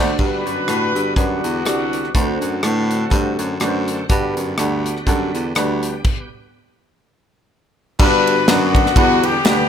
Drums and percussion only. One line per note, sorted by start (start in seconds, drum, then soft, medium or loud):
0.19 kick loud
0.19 crash medium
0.47 closed hi-hat medium
0.68 cross-stick medium
0.68 closed hi-hat medium
0.96 closed hi-hat medium
1.16 kick medium
1.16 closed hi-hat medium
1.44 closed hi-hat medium
1.65 cross-stick loud
1.65 closed hi-hat medium
1.93 closed hi-hat medium
2.04 cross-stick soft
2.15 kick loud
2.15 closed hi-hat medium
2.42 closed hi-hat medium
2.63 cross-stick medium
2.63 closed hi-hat medium
2.91 closed hi-hat medium
3.11 kick medium
3.11 closed hi-hat medium
3.39 closed hi-hat medium
3.60 cross-stick medium
3.60 closed hi-hat medium
3.88 closed hi-hat medium
4.09 kick loud
4.09 closed hi-hat medium
4.37 closed hi-hat medium
4.58 cross-stick loud
4.58 closed hi-hat medium
4.86 closed hi-hat medium
4.97 cross-stick soft
5.07 kick medium
5.07 closed hi-hat medium
5.35 closed hi-hat medium
5.55 cross-stick loud
5.55 closed hi-hat medium
5.83 closed hi-hat medium
6.04 kick loud
6.04 crash medium
8.00 kick loud
8.00 crash loud
8.27 ride medium
8.48 snare loud
8.48 ride medium
8.75 kick medium
8.75 ride medium
8.86 snare soft
8.96 kick loud
8.96 ride medium
9.23 ride medium
9.45 snare loud
9.45 ride medium